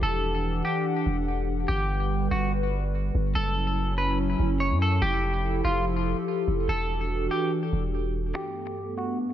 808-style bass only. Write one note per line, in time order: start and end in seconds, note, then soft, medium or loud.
0.02 0.62 E1 loud
1.06 1.66 E1 loud
1.69 2.29 G1 loud
2.31 3.11 G1 loud
3.15 3.35 G1 loud
3.36 4.36 F#1 loud
4.40 4.72 F#1 loud
4.71 5.01 F#2 loud
5.02 5.62 F1 loud
5.65 6.15 F1 loud
6.48 6.68 F1 loud
6.69 7.29 E1 loud
7.73 8.33 E1 loud